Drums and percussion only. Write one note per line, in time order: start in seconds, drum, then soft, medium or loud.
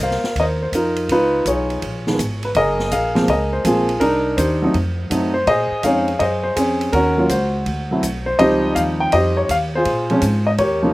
0.11 snare soft
0.24 snare soft
0.36 kick soft
0.36 ride medium
0.72 kick soft
0.72 hi-hat pedal soft
0.72 ride medium
0.96 ride soft
1.09 kick soft
1.09 ride medium
1.46 kick soft
1.46 hi-hat pedal medium
1.46 ride medium
1.70 ride soft
1.82 kick soft
1.82 ride medium
2.07 snare soft
2.19 kick soft
2.19 hi-hat pedal medium
2.19 ride medium
2.43 ride soft
2.55 kick soft
2.55 ride medium
2.79 snare soft
2.91 kick soft
2.91 hi-hat pedal soft
2.91 ride medium
3.16 snare soft
3.16 ride soft
3.28 kick soft
3.28 ride medium
3.65 kick soft
3.65 hi-hat pedal medium
3.65 ride medium
3.89 ride soft
4.01 kick soft
4.01 ride medium
4.38 kick soft
4.38 hi-hat pedal medium
4.38 ride medium
4.74 kick soft
4.74 ride soft
5.11 kick soft
5.11 hi-hat pedal medium
5.11 ride medium
5.47 kick soft
5.47 ride medium
5.83 kick soft
5.83 hi-hat pedal medium
5.83 ride medium
6.08 ride soft
6.20 kick soft
6.20 ride medium
6.56 kick soft
6.56 hi-hat pedal medium
6.56 ride medium
6.81 ride soft
6.93 kick soft
6.93 ride medium
7.29 kick soft
7.29 hi-hat pedal medium
7.29 ride medium
7.66 kick soft
7.66 ride medium
8.03 kick soft
8.03 hi-hat pedal medium
8.03 ride medium
8.39 kick soft
8.39 ride medium
8.76 kick soft
8.76 hi-hat pedal medium
8.76 ride medium
9.12 kick soft
9.12 ride medium
9.49 kick soft
9.49 hi-hat pedal soft
9.49 ride medium
9.85 kick soft
9.85 ride medium
10.10 ride soft
10.22 kick soft
10.22 hi-hat pedal medium
10.22 ride medium
10.58 kick soft
10.58 ride medium